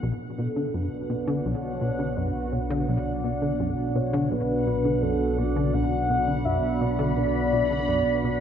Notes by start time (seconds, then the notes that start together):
0.02 B1 B2 F#5
0.16 D4
0.28 B3
0.38 B2 A4
0.42 F#5
0.56 D3
0.72 F#2 F#4 B4
1.09 B2
1.27 D3
1.45 B1 C#5
1.81 B2
1.99 D3
2.17 F#2 B4
2.52 B2 C#5
2.61 B4
2.70 D3 A4
2.79 B4
2.88 B1 D5
3.24 B2
3.42 D3
3.60 F#2
3.95 B2 C#5
4.13 D3
4.31 B1 B4
4.67 B2
4.85 D3
5.02 F#2 A4
5.38 B2 D5
5.56 D3
5.74 B1 F#5
6.10 B2
6.14 B5
6.27 D3
6.45 F#2 E5
6.81 B2 D5
6.99 D3
7.17 B1
7.52 B2
7.70 D3
7.88 F#2
8.24 B2